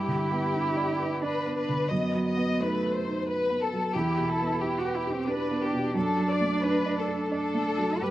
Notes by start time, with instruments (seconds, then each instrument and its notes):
Already playing: felt piano G2, cello E4, violin section G4
0.08 felt piano D3
0.31 felt piano B3
0.54 felt piano D4
0.77 felt piano D5
1.00 felt piano B4
1.22 cello D4, violin section B4, felt piano D5
1.46 felt piano B3
1.57 violin section B4
1.69 felt piano D3
1.90 felt piano F#2, cello B3, violin section D#5
2.15 felt piano F#3
2.26 violin section D#5
2.37 felt piano B3
2.59 cello A3, felt piano D#4, violin section B4
2.82 felt piano B4
2.95 violin section C5
3.05 felt piano D#4
3.27 felt piano B4, violin section B4
3.50 felt piano B3
3.61 violin section A4
3.73 felt piano F#3
3.95 felt piano E2, cello E4, violin section G4
4.18 felt piano B2
4.28 violin section A4
4.40 felt piano B3
4.61 violin section G4, felt piano G4
4.78 cello F#4
4.85 felt piano B4
4.95 cello E4
5.07 felt piano G4
5.13 cello C4
5.27 cello D4, violin section B4, felt piano B4
5.51 felt piano B3
5.63 violin section G4
5.73 felt piano B2
5.95 felt piano F#2, cello D4, violin section A4
6.18 felt piano F#3
6.28 violin section D5
6.41 felt piano A3
6.63 felt piano D4, violin section B4
6.86 felt piano D5
6.97 violin section A4
7.08 felt piano A4
7.31 cello D4, violin section A4, felt piano D5
7.54 felt piano A3
7.78 felt piano F#3
8.00 felt piano G2, cello G4, violin section B4